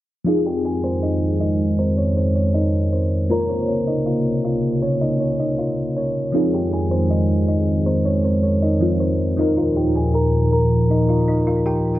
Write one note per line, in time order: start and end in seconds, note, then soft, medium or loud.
0.24 3.27 F2 medium
0.24 3.27 D#3 medium
0.24 3.25 F3 medium
0.24 3.27 G#3 medium
0.24 3.26 C4 medium
0.24 3.27 D#4 medium
0.24 0.41 F4 medium
0.24 3.27 G#4 medium
0.24 0.42 F5 medium
0.46 0.60 G4 medium
0.46 0.61 G5 medium
0.65 0.79 G#4 medium
0.65 0.80 G#5 medium
0.84 0.99 C4 medium
0.84 0.98 C5 medium
1.03 1.39 D#4 medium
1.03 1.38 D#5 medium
1.41 1.77 D#4 medium
1.41 1.76 D#5 medium
1.79 1.94 C4 medium
1.79 1.93 C5 medium
1.98 2.13 C#4 medium
1.98 2.12 C#5 medium
2.17 2.32 C4 medium
2.17 2.31 C5 medium
2.36 2.51 C#4 medium
2.36 2.50 C#5 medium
2.54 2.91 D#4 medium
2.54 2.90 D#5 medium
2.93 3.29 C4 medium
2.93 3.28 C5 medium
3.29 6.31 C3 medium
3.29 6.31 C#3 medium
3.29 6.30 A#3 medium
3.29 6.31 A#3 medium
3.29 6.30 F4 medium
3.29 3.45 A#4 medium
3.29 6.31 C5 medium
3.29 6.31 C#5 medium
3.29 3.45 A#5 medium
3.49 3.64 C4 medium
3.49 3.64 C5 medium
3.68 3.83 C#4 medium
3.68 3.83 C#5 medium
3.87 4.02 D#4 medium
3.87 4.02 D#5 medium
4.06 4.42 F4 medium
4.06 4.42 F5 medium
4.45 4.81 F4 medium
4.45 4.80 F5 medium
4.82 4.97 C#4 medium
4.82 4.97 C#5 medium
5.01 5.16 D#4 medium
5.01 5.16 D#5 medium
5.20 5.35 C#4 medium
5.20 5.35 C#5 medium
5.40 5.54 D#4 medium
5.40 5.54 D#5 medium
5.58 5.95 F4 medium
5.58 5.94 F5 medium
5.97 6.12 C#4 medium
5.97 6.11 C#5 medium
6.32 9.35 F2 medium
6.32 9.35 D#3 medium
6.32 8.76 F3 medium
6.32 9.35 G#3 medium
6.32 8.77 C4 medium
6.32 8.77 D#4 medium
6.32 6.49 F4 medium
6.32 8.78 G#4 medium
6.32 6.49 F5 medium
6.54 6.68 G4 medium
6.54 6.68 G5 medium
6.73 6.87 G#4 medium
6.73 6.87 G#5 medium
6.91 7.06 C4 medium
6.91 7.06 C5 medium
7.10 7.46 D#4 medium
7.10 7.46 D#5 medium
7.48 7.84 D#4 medium
7.48 7.84 D#5 medium
7.86 8.01 C4 medium
7.86 8.01 C5 loud
8.05 8.20 C#4 medium
8.05 8.20 C#5 medium
8.24 8.39 C4 medium
8.24 8.39 C5 medium
8.43 8.58 C#4 medium
8.43 8.58 C#5 medium
8.62 8.98 D#4 medium
8.62 8.98 D#5 medium
8.80 9.38 F3 soft
8.80 9.38 C4 soft
8.80 9.37 D#4 soft
8.80 9.38 F4 medium
9.00 9.36 C4 medium
9.00 9.36 C5 medium
9.37 11.99 D#2 medium
9.37 11.99 A#2 medium
9.37 11.99 D#3 medium
9.37 11.99 F3 medium
9.37 11.99 D#4 medium
9.37 9.53 D#4 medium
9.37 11.99 F4 medium
9.37 11.99 A#4 medium
9.37 9.53 D#5 medium
9.57 9.72 F4 medium
9.57 9.72 F5 medium
9.76 9.91 G4 medium
9.76 9.91 G5 medium
9.95 10.10 G#4 medium
9.95 10.10 G#5 medium
10.14 10.50 A#4 medium
10.14 10.50 A#5 medium
10.52 10.88 A#4 medium
10.52 10.88 A#5 medium
10.90 11.04 D#4 loud
10.90 11.05 D#5 medium
11.09 11.23 F4 medium
11.09 11.24 F5 medium
11.28 11.42 D#4 medium
11.28 11.43 D#5 medium
11.47 11.61 F4 medium
11.47 11.62 F5 medium
11.66 11.99 G4 medium
11.66 11.99 G5 medium